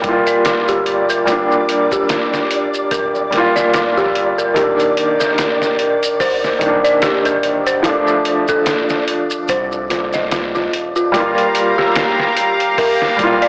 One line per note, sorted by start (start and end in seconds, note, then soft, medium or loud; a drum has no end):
0.00 0.25 C2 medium
0.00 1.22 G3 medium
0.00 0.05 A#3 medium
0.00 0.09 F4 medium
0.00 0.69 G4 medium
0.00 1.10 A#4 medium
0.00 11.16 D5 medium
0.00 kick medium
0.00 closed hi-hat medium
0.05 1.24 A#3 medium
0.05 1.25 F4 medium
0.27 0.43 D5 medium
0.27 closed hi-hat soft
0.27 maracas medium
0.45 0.66 F4 medium
0.45 snare loud
0.45 closed hi-hat medium
0.45 maracas medium
0.68 1.24 G1 medium
0.68 0.86 G4 medium
0.68 closed hi-hat soft
0.68 maracas soft
0.86 closed hi-hat medium
1.09 1.26 A#4 medium
1.09 closed hi-hat soft
1.09 maracas medium
1.25 1.48 G1 loud
1.25 3.28 G3 medium
1.25 3.29 A#3 medium
1.25 1.90 F4 medium
1.25 kick loud
1.25 closed hi-hat medium
1.25 maracas medium
1.32 3.31 D4 loud
1.51 maracas soft
1.69 closed hi-hat medium
1.92 2.72 G4 medium
1.92 kick medium
1.92 maracas medium
2.09 snare loud
2.09 closed hi-hat medium
2.09 maracas medium
2.34 snare medium
2.34 maracas soft
2.51 closed hi-hat medium
2.74 maracas medium
2.91 3.93 D1 loud
2.91 3.14 A#4 medium
2.91 kick loud
2.91 closed hi-hat medium
2.91 maracas medium
3.15 maracas soft
3.31 4.51 G3 medium
3.31 4.52 A#3 medium
3.31 snare soft
3.31 closed hi-hat medium
3.38 4.54 F4 loud
3.56 3.72 D5 medium
3.56 snare medium
3.56 maracas medium
3.74 3.95 F4 medium
3.74 snare loud
3.74 closed hi-hat medium
3.74 maracas medium
3.97 4.13 A#1 loud
3.97 4.14 G4 loud
3.97 snare soft
3.97 maracas soft
4.15 4.52 G1 medium
4.15 closed hi-hat medium
4.38 4.54 A#4 medium
4.38 maracas medium
4.54 4.77 G1 loud
4.54 6.56 D#3 medium
4.54 6.58 A#3 medium
4.54 5.18 G4 medium
4.54 kick loud
4.54 closed hi-hat medium
4.54 maracas medium
4.61 6.60 D4 medium
4.80 closed hi-hat soft
4.80 maracas soft
4.97 closed hi-hat medium
5.20 6.00 A#4 medium
5.20 snare soft
5.20 maracas medium
5.38 snare loud
5.38 closed hi-hat medium
5.38 maracas medium
5.62 snare soft
5.62 maracas soft
5.79 closed hi-hat medium
6.03 closed hi-hat soft
6.03 maracas medium
6.20 6.43 C5 loud
6.20 kick loud
6.20 open hi-hat medium
6.20 maracas medium
6.44 snare soft
6.44 maracas soft
6.59 6.82 C2 loud
6.59 7.79 D#3 medium
6.59 7.81 A#3 medium
6.59 kick medium
6.59 closed hi-hat medium
6.66 7.83 D4 medium
6.84 7.01 D5 loud
6.84 closed hi-hat soft
6.84 maracas medium
7.02 7.24 G4 medium
7.02 snare loud
7.02 closed hi-hat medium
7.02 maracas medium
7.25 7.82 G1 medium
7.25 7.43 A#4 loud
7.25 closed hi-hat soft
7.25 maracas soft
7.43 closed hi-hat medium
7.67 7.83 C5 medium
7.67 closed hi-hat soft
7.67 maracas medium
7.83 8.06 F1 medium
7.83 9.85 F3 medium
7.83 9.87 A3 medium
7.83 8.47 F4 medium
7.83 kick loud
7.83 closed hi-hat medium
7.83 maracas medium
7.89 9.88 D4 loud
8.07 maracas soft
8.25 closed hi-hat medium
8.48 9.29 A4 medium
8.48 kick medium
8.48 maracas medium
8.66 snare loud
8.66 closed hi-hat medium
8.66 maracas medium
8.89 snare soft
8.89 maracas soft
9.08 closed hi-hat medium
9.30 maracas medium
9.48 10.31 C2 loud
9.48 9.72 C5 loud
9.48 kick loud
9.48 closed hi-hat medium
9.48 maracas medium
9.72 maracas soft
9.90 10.11 F4 medium
9.90 snare soft
9.90 closed hi-hat medium
10.13 10.24 D#5 medium
10.13 snare soft
10.13 maracas medium
10.31 10.69 C2 medium
10.31 10.53 F4 medium
10.31 snare loud
10.31 closed hi-hat medium
10.31 maracas medium
10.55 10.72 F4 medium
10.55 snare soft
10.55 maracas soft
10.73 11.10 D#1 medium
10.73 closed hi-hat medium
10.96 11.12 F4 medium
10.96 maracas medium
11.12 11.35 G1 loud
11.12 13.14 G3 medium
11.12 13.16 A#3 medium
11.12 11.76 F4 medium
11.12 13.48 G4 medium
11.12 13.48 F5 medium
11.12 13.48 A#5 medium
11.12 kick loud
11.12 closed hi-hat medium
11.19 13.18 F4 medium
11.38 closed hi-hat soft
11.55 closed hi-hat medium
11.78 12.58 G4 medium
11.78 snare soft
11.95 snare loud
11.95 closed hi-hat medium
12.20 snare soft
12.37 closed hi-hat medium
12.60 closed hi-hat soft
12.78 13.00 A#4 loud
12.78 kick loud
12.78 open hi-hat medium
13.02 snare soft
13.17 13.40 C2 medium
13.17 13.48 G3 medium
13.17 13.48 A#3 medium
13.17 kick medium
13.17 closed hi-hat medium
13.23 13.48 F4 loud
13.42 13.48 D5 medium
13.42 closed hi-hat soft